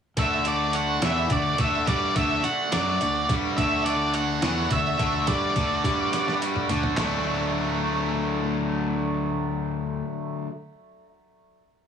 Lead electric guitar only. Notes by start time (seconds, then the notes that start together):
0.19 E5
0.47 D5
0.75 F#5
1.05 E5
1.32 D5
1.61 E5
1.88 D5
2.16 E5
2.44 F#5
2.73 D5
3.57 E5
3.85 D5
4.14 F#5
4.72 E5
5.28 D5